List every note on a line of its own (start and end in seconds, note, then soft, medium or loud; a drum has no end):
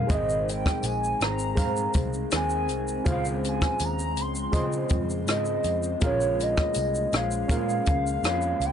0.00 0.11 D#4 medium
0.00 3.02 D#4 medium
0.00 0.07 G#4 medium
0.00 2.89 G#4 medium
0.00 0.10 A#4 medium
0.00 0.10 D#5 loud
0.00 0.15 F5 medium
0.07 0.69 G#1 loud
0.07 1.20 G#2 medium
0.07 1.20 D#3 medium
0.07 1.21 G#3 medium
0.07 1.19 C4 medium
0.07 1.16 G#4 medium
0.07 1.16 C5 medium
0.07 1.17 D#5 medium
0.07 kick loud
0.07 closed hi-hat medium
0.07 shaker medium
0.11 5.99 G#3 medium
0.11 3.04 C4 medium
0.11 0.48 D#5 medium
0.30 shaker medium
0.49 0.87 G5 medium
0.49 closed hi-hat soft
0.49 shaker medium
0.66 kick loud
0.66 cross-stick medium
0.66 shaker medium
0.83 1.13 A#1 loud
0.83 1.21 G#5 loud
0.83 closed hi-hat medium
0.83 tambourine medium
0.83 shaker medium
1.04 shaker medium
1.20 1.59 G#1 medium
1.20 1.58 G#3 soft
1.20 1.57 C4 soft
1.20 1.92 A#5 loud
1.20 cross-stick loud
1.20 closed hi-hat medium
1.20 shaker medium
1.24 1.57 D#3 soft
1.39 shaker medium
1.55 2.29 G#2 medium
1.55 1.87 G#2 loud
1.55 2.31 D#3 medium
1.55 2.64 G#4 medium
1.55 2.65 C5 medium
1.55 2.65 F5 medium
1.55 kick medium
1.55 closed hi-hat medium
1.55 shaker medium
1.59 2.33 G#3 medium
1.59 2.34 C4 medium
1.77 shaker medium
1.94 2.24 C2 medium
1.94 kick medium
1.94 closed hi-hat medium
1.94 shaker medium
2.14 shaker medium
2.31 2.70 D#2 medium
2.31 3.05 G#2 medium
2.31 3.06 D#3 medium
2.31 3.08 G#3 medium
2.31 3.08 C4 medium
2.31 cross-stick medium
2.31 closed hi-hat medium
2.31 tambourine medium
2.31 shaker medium
2.35 3.03 G#5 loud
2.50 shaker soft
2.69 2.99 C2 medium
2.69 closed hi-hat soft
2.69 shaker soft
2.88 shaker medium
3.04 3.65 C#2 loud
3.04 4.52 C#3 medium
3.04 5.99 C#3 medium
3.04 4.54 F3 medium
3.04 4.13 C#4 medium
3.04 4.13 F4 medium
3.04 5.99 F4 medium
3.04 4.13 G#4 medium
3.04 5.99 C5 medium
3.04 4.13 C5 medium
3.04 4.14 F5 medium
3.04 kick loud
3.04 closed hi-hat medium
3.04 shaker medium
3.09 4.56 G#3 medium
3.09 4.56 C4 loud
3.09 3.26 F5 loud
3.25 shaker soft
3.44 closed hi-hat soft
3.44 shaker soft
3.49 3.86 G#5 medium
3.62 kick medium
3.62 cross-stick loud
3.62 shaker medium
3.79 4.17 D#2 loud
3.79 closed hi-hat medium
3.79 tambourine medium
3.79 shaker medium
3.84 4.23 A#5 loud
3.99 shaker medium
4.17 4.47 C#2 medium
4.17 closed hi-hat medium
4.17 shaker medium
4.21 4.93 C6 loud
4.35 shaker medium
4.52 4.83 C#3 loud
4.52 5.26 C#3 medium
4.52 5.29 F3 medium
4.52 5.61 C#4 medium
4.52 5.60 F4 medium
4.52 5.61 G#4 medium
4.52 5.61 C5 medium
4.52 5.61 D#5 medium
4.52 kick medium
4.52 closed hi-hat medium
4.52 shaker medium
4.56 5.29 G#3 medium
4.56 5.29 C4 medium
4.72 shaker medium
4.89 5.28 F2 medium
4.89 kick medium
4.89 closed hi-hat medium
4.89 shaker soft
5.10 shaker medium
5.27 5.57 G#2 medium
5.27 6.02 C#3 medium
5.27 6.03 F3 medium
5.27 6.04 G#3 medium
5.27 6.03 C4 medium
5.27 5.99 D#5 medium
5.27 cross-stick medium
5.27 closed hi-hat medium
5.27 tambourine medium
5.27 shaker medium
5.45 shaker soft
5.64 5.94 F2 medium
5.64 closed hi-hat soft
5.64 shaker soft
5.83 shaker medium
6.00 6.61 A#1 loud
6.00 7.13 A#2 medium
6.00 7.14 F3 medium
6.00 8.72 G#3 medium
6.00 8.72 A#3 medium
6.00 6.07 C4 medium
6.00 8.72 C#4 loud
6.00 7.09 F4 medium
6.00 7.09 G#4 medium
6.00 7.10 A#4 medium
6.00 7.10 F5 medium
6.00 kick loud
6.00 closed hi-hat medium
6.00 shaker medium
6.04 7.14 G#3 medium
6.04 7.11 C#4 medium
6.04 7.12 C#4 medium
6.04 6.44 C#5 medium
6.21 shaker medium
6.40 7.15 D#5 medium
6.40 closed hi-hat soft
6.40 shaker soft
6.57 kick loud
6.57 cross-stick loud
6.57 shaker medium
6.74 7.06 C2 medium
6.74 closed hi-hat medium
6.74 tambourine medium
6.74 shaker medium
6.95 shaker medium
7.13 7.43 A#1 loud
7.13 7.51 G#3 soft
7.13 7.50 C#4 soft
7.13 8.67 F5 loud
7.13 cross-stick loud
7.13 closed hi-hat medium
7.13 shaker medium
7.17 7.51 F3 soft
7.31 shaker medium
7.48 7.79 A#2 loud
7.48 8.23 A#2 medium
7.48 8.24 F3 medium
7.48 8.57 C#4 medium
7.48 8.58 F4 medium
7.48 8.58 G#4 medium
7.48 8.58 A#4 medium
7.48 8.59 F5 medium
7.48 kick medium
7.48 closed hi-hat medium
7.48 shaker medium
7.53 8.26 G#3 medium
7.53 8.26 C#4 medium
7.69 shaker soft
7.86 8.17 C#2 medium
7.86 kick medium
7.86 closed hi-hat medium
7.86 shaker medium
8.07 shaker medium
8.23 8.53 F2 medium
8.23 8.72 A#2 medium
8.23 8.72 F3 medium
8.23 8.72 G#3 medium
8.23 cross-stick medium
8.23 closed hi-hat medium
8.23 tambourine medium
8.23 shaker medium
8.28 8.72 C#4 medium
8.42 shaker soft
8.60 8.72 C#2 loud
8.60 closed hi-hat soft
8.60 shaker soft
8.65 8.72 G5 loud